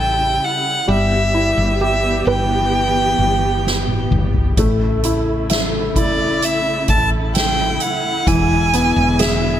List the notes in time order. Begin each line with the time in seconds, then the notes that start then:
Already playing: A1 C#3 G3 A3 E4 E5
0.00 G5
0.44 F#5
0.88 G1 E3 G3 B3 G4 E5
1.34 E4
1.57 G1
1.81 G4 E5
2.27 G1 B4 G5
3.19 G1
3.67 snare
3.88 high tom
4.11 G1, mid tom
4.34 floor tom
4.57 A1 C#3 A3 E4, kick, closed hi-hat
5.04 E4, closed hi-hat
5.50 E5, snare, closed hi-hat
5.96 E4 D5, kick, closed hi-hat
6.42 E5, closed hi-hat
6.88 A1 A5, kick, closed hi-hat
7.35 G5, snare, closed hi-hat
7.80 F#5, closed hi-hat
8.27 E1 D3 E3 G#3 G#5, kick, closed hi-hat
8.73 B3, closed hi-hat
8.96 E1
9.19 G#4 E5, snare, closed hi-hat